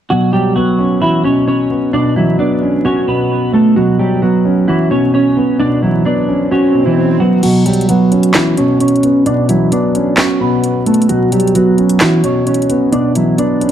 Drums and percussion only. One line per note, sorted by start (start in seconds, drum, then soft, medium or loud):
7.43 closed hi-hat medium
7.43 crash medium
7.66 closed hi-hat medium
7.74 closed hi-hat medium
7.81 closed hi-hat medium
7.89 closed hi-hat medium
8.12 closed hi-hat soft
8.23 closed hi-hat medium
8.34 snare loud
8.34 clap medium
8.34 closed hi-hat medium
8.57 closed hi-hat medium
8.80 closed hi-hat medium
8.88 closed hi-hat medium
8.96 closed hi-hat soft
9.03 closed hi-hat medium
9.26 closed hi-hat medium
9.49 closed hi-hat medium
9.72 closed hi-hat medium
9.95 closed hi-hat medium
10.17 snare loud
10.17 clap medium
10.17 closed hi-hat medium
10.64 closed hi-hat medium
10.86 closed hi-hat medium
10.86 open hi-hat medium
10.94 closed hi-hat medium
11.02 closed hi-hat medium
11.09 closed hi-hat medium
11.32 closed hi-hat medium
11.40 closed hi-hat medium
11.47 closed hi-hat medium
11.55 closed hi-hat medium
11.78 closed hi-hat soft
11.89 closed hi-hat medium
12.00 snare loud
12.00 clap loud
12.00 closed hi-hat medium
12.24 closed hi-hat medium
12.47 closed hi-hat medium
12.54 closed hi-hat medium
12.62 closed hi-hat soft
12.70 closed hi-hat medium
12.93 closed hi-hat medium
13.15 closed hi-hat medium
13.38 closed hi-hat medium
13.61 closed hi-hat medium